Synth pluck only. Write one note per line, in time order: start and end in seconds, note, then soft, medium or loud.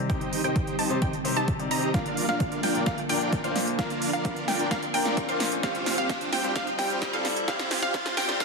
0.10 0.42 G5 medium
0.44 0.76 G5 loud
0.79 0.98 A5 medium
1.02 1.16 G5 loud
1.37 1.51 A5 loud
1.71 1.91 A#5 loud
1.94 2.26 F5 medium
2.29 2.61 F5 loud
2.63 2.83 G5 loud
2.86 3.00 F5 loud
3.10 3.41 G5 loud
3.44 3.58 F5 medium
3.79 4.11 F5 medium
4.13 4.45 F5 loud
4.48 4.68 G5 medium
4.71 4.85 F5 loud
4.94 5.26 G5 loud
5.29 5.43 F5 medium
5.63 5.95 F5 medium
5.98 6.30 F5 loud
6.33 6.52 G5 medium
6.56 6.70 F5 loud
6.79 7.11 G5 loud
7.13 7.27 F5 medium
7.48 7.80 F5 medium
7.83 8.15 F5 loud
8.17 8.37 G5 loud
8.40 8.45 F5 loud